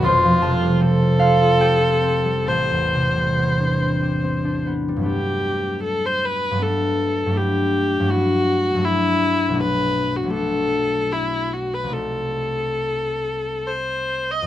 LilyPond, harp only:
<<
  \new Staff \with { instrumentName = "Harp" } { \time 3/4 \key g \mixolydian \tempo 4 = 77 <a' c'' a'' c'''>8 <a' a''>4 <f' f''>8 <g' g''>4 | <a' a''>2.~ | <a' a''>2.~ | <a' a''>2. |
r2. | r2. | }
  \new Staff \with { instrumentName = "Harp" } { \time 3/4 \key g \mixolydian << { <f,, f, a>16 f16 c16 g16 c'16 f'16 c'16 f'16 c'16 f'16 c'16 g16 | a,,16 e,16 c16 g16 b16 d'16 c'16 g'16 c'16 d'16 b16 g16~ | g2.~ | g2. |
r2. | r2. | } \\ { r2. | r2. | <g, fis a b d'>2 <g, fis a b d'>4 | <g, fis a d' e'>4 <g, fis a d' e'>4 <g, fis a d' e'>4 |
<b,, fis a d' fis'>4 <b,, fis a d' fis'>2 | <c, g a ees' a'>2. | } >> }
>>